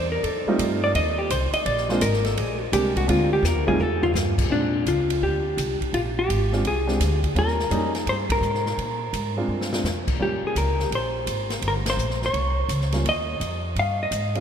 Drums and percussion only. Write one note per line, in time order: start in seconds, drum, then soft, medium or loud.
0.24 kick soft
0.24 ride medium
0.59 kick soft
0.59 hi-hat pedal medium
0.59 ride medium
0.95 kick soft
0.95 ride medium
1.30 kick soft
1.30 hi-hat pedal medium
1.30 ride medium
1.53 ride soft
1.66 kick soft
1.66 ride medium
1.77 snare soft
1.89 snare soft
2.01 kick soft
2.01 hi-hat pedal medium
2.01 ride medium
2.13 snare soft
2.25 snare soft
2.25 ride soft
2.37 kick soft
2.37 ride medium
2.73 kick soft
2.73 hi-hat pedal medium
2.73 ride medium
2.96 kick medium
2.96 ride medium
3.09 ride medium
3.44 snare soft
3.44 hi-hat pedal medium
3.67 floor tom medium
3.80 floor tom medium
4.03 floor tom medium
4.15 snare medium
4.15 hi-hat pedal medium
4.38 kick medium
4.38 crash medium
4.51 kick soft
4.86 kick soft
4.86 hi-hat pedal medium
4.86 ride medium
5.10 ride medium
5.22 kick soft
5.58 kick soft
5.58 hi-hat pedal medium
5.58 ride medium
5.81 kick soft
5.81 ride soft
5.94 ride medium
6.29 kick soft
6.29 hi-hat pedal medium
6.29 ride medium
6.52 snare soft
6.64 kick soft
6.64 ride medium
6.88 snare soft
7.00 kick soft
7.00 snare soft
7.00 hi-hat pedal medium
7.00 ride medium
7.23 kick soft
7.23 ride soft
7.36 kick soft
7.36 ride medium
7.48 snare soft
7.59 snare soft
7.71 kick soft
7.71 hi-hat pedal soft
7.71 ride medium
7.95 snare soft
7.95 ride soft
8.06 kick soft
8.06 ride medium
8.30 kick medium
8.30 ride medium
8.42 hi-hat pedal medium
8.54 snare soft
8.66 snare soft
8.78 kick soft
8.78 ride soft
9.13 kick soft
9.13 hi-hat pedal medium
9.13 ride medium
9.61 snare medium
9.73 snare medium
9.85 snare medium
9.85 hi-hat pedal medium
10.08 kick medium
10.08 crash medium
10.20 kick soft
10.56 kick soft
10.56 hi-hat pedal medium
10.56 ride medium
10.79 snare soft
10.91 kick soft
10.91 ride medium
11.27 kick soft
11.27 hi-hat pedal medium
11.27 ride medium
11.50 snare medium
11.50 ride soft
11.62 kick soft
11.62 ride medium
11.86 snare medium
11.86 ride medium
11.99 hi-hat pedal medium
12.10 snare soft
12.22 snare soft
12.34 kick soft
12.34 ride soft
12.69 kick soft
12.69 hi-hat pedal medium
12.69 ride medium
12.81 snare soft
12.92 snare soft
12.92 ride soft
13.05 kick soft
13.05 ride medium
13.41 kick soft
13.41 hi-hat pedal soft
13.41 ride medium
13.76 kick soft
13.76 ride medium
14.11 kick soft
14.11 hi-hat pedal medium
14.11 ride medium
14.35 ride soft